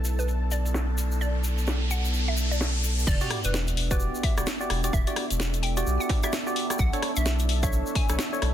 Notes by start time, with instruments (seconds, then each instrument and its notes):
Already playing: sub bass B1, ambient pad B3 E4 A4 D5, analog synth pad A4 A5, riser
0.05 open hi-hat, shaker
0.19 synth pluck B4, shaker
0.28 closed hi-hat, shaker
0.51 synth pluck D5, open hi-hat, shaker
0.65 closed hi-hat, shaker
0.74 snare, shaker
0.98 open hi-hat, shaker
1.11 shaker
1.21 synth pluck D5, closed hi-hat, shaker
1.35 closed hi-hat
1.44 open hi-hat, shaker
1.58 closed hi-hat, shaker
1.67 snare, shaker
1.91 synth pluck F#5, open hi-hat, shaker
2.05 shaker
2.14 closed hi-hat, shaker
2.28 synth pluck E5
2.37 open hi-hat, shaker
2.51 synth pluck D5, closed hi-hat, shaker
2.61 snare, shaker
2.84 open hi-hat, shaker
2.98 closed hi-hat, shaker
3.07 sub bass E1, analog synth pad D4 E5, synth pluck D5, kick, crash, sub drop, shaker
3.16 ambient pad E4
3.21 synth stab F#4 G4 D5, closed hi-hat, shaker
3.31 cross-stick, open hi-hat
3.44 sub bass E1, synth pluck B4, closed hi-hat, shaker
3.54 ambient pad A4, snare, shaker
3.67 closed hi-hat, shaker
3.77 open hi-hat
3.91 synth stab F#4 G4 D5, synth pluck B4, kick, closed hi-hat, shaker
4.00 shaker
4.15 shaker
4.23 synth pluck E5, kick, open hi-hat
4.37 sub bass E1, synth stab F#4 G4 D5, cross-stick, closed hi-hat, shaker
4.46 snare, shaker
4.60 synth stab F#4 G4 D5, shaker
4.70 sub bass E1, cross-stick, open hi-hat
4.84 synth stab F#4 G4 D5, closed hi-hat, shaker
4.93 sub bass E1, synth pluck E5, kick, shaker
5.07 synth stab F#4 G4 D5, closed hi-hat, shaker
5.16 cross-stick, open hi-hat
5.30 sub bass E1, closed hi-hat, shaker
5.40 snare, shaker
5.54 closed hi-hat, shaker
5.63 synth pluck G5, open hi-hat
5.77 synth stab F#4 G4 D5, closed hi-hat, shaker
5.86 sub bass B1, shaker
6.00 synth pluck F#5, shaker
6.09 kick, open hi-hat, high bongo
6.23 synth stab F#4 G4 D5, synth pluck E5, cross-stick, closed hi-hat, shaker
6.33 snare, shaker
6.47 synth stab F#4 G4 D5, shaker
6.56 open hi-hat
6.70 synth stab F#4 G4 D5, cross-stick, closed hi-hat, shaker
6.78 sub bass B1, synth pluck F#5, kick, shaker
6.93 synth stab D4 A4 C#5, closed hi-hat, shaker
7.03 cross-stick, open hi-hat
7.16 sub bass B1, synth pluck E5, closed hi-hat, shaker
7.26 snare, shaker
7.39 closed hi-hat, shaker
7.49 open hi-hat
7.63 synth stab D4 A4 C#5, synth pluck E5, kick, closed hi-hat, shaker
7.73 shaker
7.86 shaker
7.95 synth pluck G#5, kick, open hi-hat
8.09 sub bass B1, synth stab D4 A4 C#5, cross-stick, closed hi-hat, shaker
8.19 snare, shaker
8.33 synth stab D4 A4 C#5, shaker
8.42 sub bass B1, cross-stick, open hi-hat